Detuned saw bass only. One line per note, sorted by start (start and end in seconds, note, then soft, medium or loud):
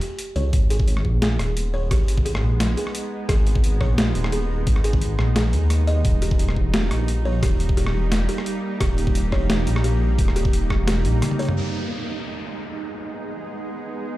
0.36 0.52 C#2 loud
0.53 1.04 G#1 loud
1.05 1.38 A#1 medium
1.39 1.90 D#1 medium
1.91 2.42 G#1 medium
2.43 2.76 A#1 medium
3.29 3.80 G#1 loud
3.81 4.14 A#1 medium
4.15 4.66 D#1 medium
4.67 5.18 G#1 loud
5.19 5.55 A#1 medium
5.53 6.04 D#2 medium
6.05 6.56 D#1 loud
6.56 6.90 E1 loud
6.91 7.42 A#1 medium
7.43 7.93 D#1 loud
7.94 8.28 E1 medium
8.81 9.31 D#1 loud
9.32 9.66 E1 medium
9.67 10.18 A#1 medium
10.18 10.69 D#1 loud
10.70 11.06 E1 medium
11.05 11.22 A#1 medium